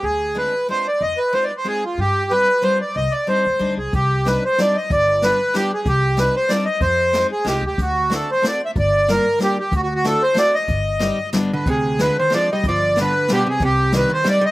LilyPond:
<<
  \new Staff \with { instrumentName = "Accordion" } { \time 3/4 \key c \minor \tempo 4 = 186 aes'4 b'4 c''8 d''8 | ees''8 b'8 \tuplet 3/2 { c''8 d''8 c''8 } aes'8 f'8 | g'4 b'4 c''8 d''8 | ees''8 d''8 c''4. aes'8 |
g'4 b'8 c''8 d''8 ees''8 | d''4 b'4 g'8 aes'8 | g'4 b'8 c''8 d''8 ees''8 | c''4. aes'8 g'8 g'8 |
fis'4 a'8 c''8 d''8 e''8 | d''4 bes'4 g'8 g'8 | \tuplet 3/2 { fis'8 fis'8 fis'8 } a'8 c''8 d''8 ees''8~ | ees''2 r8 b'8 |
aes'4 b'8 c''8 d''8 ees''8 | d''4 b'4 g'8 aes'8 | g'4 b'8 c''8 d''8 ees''8 | }
  \new Staff \with { instrumentName = "Steel-string acoustic guitar" } { \time 3/4 \key c \minor r4 <aes c' d' f'>8 r8 <aes c' d' f'>8 r8 | r4 <aes c' ees' f'>8 r8 <aes c' ees' f'>8 r8 | r4 <g c' d' f'>8 r8 <g c' d' f'>8 r8 | r4 <g c' d' ees'>8 r8 <g c' d' ees'>8 r8 |
r4 <g c' d' ees'>8 r8 <g c' d' ees'>8 r8 | r4 <g b d' f'>8 r8 <g b d' f'>8 r8 | r4 <g c' d' ees'>8 r8 <g c' d' ees'>8 r8 | r4 <aes c' ees' f'>8 r8 <aes c' ees' f'>8 r8 |
r4 <a c' d' fis'>8 r8 <a c' d' fis'>8 r8 | r4 <g bes d' f'>8 r8 <g bes d' f'>8 r8 | r4 <a c' d' fis'>8 r8 <a c' d' fis'>8 r8 | r4 <g c' ees' g'>8 r8 <g b d' f'>8 r8 |
r4 <aes c' d' f'>8 r8 <aes c' d' f'>8 r8 | r4 <g b d' f'>8 r8 <g b d' f'>8 r8 | r4 <g c' ees' g'>8 r8 <g c' ees' g'>8 r8 | }
  \new Staff \with { instrumentName = "Hollow-body jazz guitar" } { \clef bass \time 3/4 \key c \minor r2. | r2. | r2. | r2. |
r2. | r2. | r2. | r2. |
r2. | r2. | r2. | r2 r8 d8 |
c4 d8 ees8 f8 g8 | f4 d4 b,8 c8 | c4 ees8 ees8 g8 g8 | }
  \new Staff \with { instrumentName = "Upright bass" } { \clef bass \time 3/4 \key c \minor d,2 r4 | f,8 r2 r8 | g,2 r4 | c,8 r4 ees,8 d,8 c,8 |
c,2 r4 | g,,2 r4 | c,2 r4 | f,2 c,8 d,8 |
d,2 r4 | g,,2 r4 | d,2 r4 | g,,2 g,,4 |
d,2 r4 | g,,2 r4 | c,2 r4 | }
  \new DrumStaff \with { instrumentName = "Drums" } \drummode { \time 3/4 r4 r4 r4 | r4 r4 r4 | r4 r4 r4 | r4 r4 r4 |
<hh bd>4 <hh sn>4 <hh sn>4 | <hh bd>4 <hh sn>4 <hh sn>4 | <hh bd>4 <hh sn>4 <hh sn>4 | <hh bd>4 <hh sn>4 <hh sn>4 |
<hh bd>4 <hh sn>4 <hh sn>4 | <hh bd>4 <hh sn>4 <hh sn>4 | <hh bd>4 <hh sn>4 <hh sn>4 | <hh bd>4 <hh sn>4 <hh sn>4 |
<hh bd>4 <hh sn>4 <hh sn>4 | <hh bd>4 <hh sn>4 <hh sn>4 | <hh bd>4 <hh sn>4 <hh sn>4 | }
>>